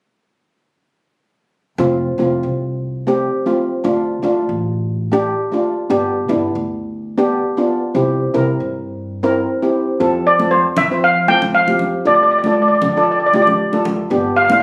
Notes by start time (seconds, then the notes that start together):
1.78 F1 A3 C4 F4
2.18 F1 A3 C4 F4
2.43 C2
3.07 A3 C4 G4
3.46 A3 C4 F4
3.84 D2 A3 D4 F4
4.22 D2 A3 D4 F4
4.49 A1
5.12 A3 D4 G4
5.52 A3 D4 F4
5.90 G1 B3 D4 G4
6.28 G1 B3 D4 E4
6.55 D2
7.18 B3 D4 G4
7.57 B3 D4 F4
7.95 C2 C4 E4 G4
8.34 C2 C4 E4 A#4
8.60 G2
9.23 C4 E4 A#4
9.62 C4 E4 G4
10.00 F2 C4 F4 A4
10.27 D5
10.39 C4 F4 A4, high conga
10.51 C5
10.77 F3 E5, low conga
10.91 C4 F4 C5
11.04 F5
11.28 C4 F4 A4 G5, high conga
11.42 F3, low conga
11.55 F5
11.67 C4 F4 G4, high conga
11.79 low conga
12.05 D2 D4 F4 A4 D5
12.14 D5
12.23 D5
12.31 D5
12.39 D5
12.44 D4 F4 A4 D5, high conga
12.53 D5
12.62 D5
12.68 D5
12.75 D5
12.82 D3 D5, low conga
12.89 D5
12.96 D4 F4 A4 D5
13.04 D5
13.12 D5
13.20 D5
13.26 D5
13.33 D4 F4 G4 D5, high conga
13.42 D5
13.47 D3, low conga
13.73 D4 F4 A4, high conga
13.85 low conga
14.10 G1 B3 D4 G4
14.36 F5
14.45 F5
14.49 B3 D4 E4 F5, high conga